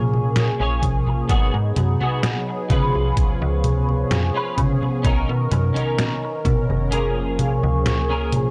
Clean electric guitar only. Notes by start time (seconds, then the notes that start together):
0.60 C#4 G#4 C#5
1.07 muted clean electric guitar stroke
1.29 B3 F#4 G#4
1.76 muted clean electric guitar stroke
2.01 B3 F#4 G#4
2.48 muted clean electric guitar stroke
2.70 C#4 F4 B4
4.34 C#4 F4 B4
4.81 muted clean electric guitar stroke
5.03 C#4 D#4 A#4
5.50 muted clean electric guitar stroke
5.74 C#4 D#4 A#4
6.22 muted clean electric guitar stroke
6.91 C#4 G#4 A#4
8.10 C#4 G#4 A#4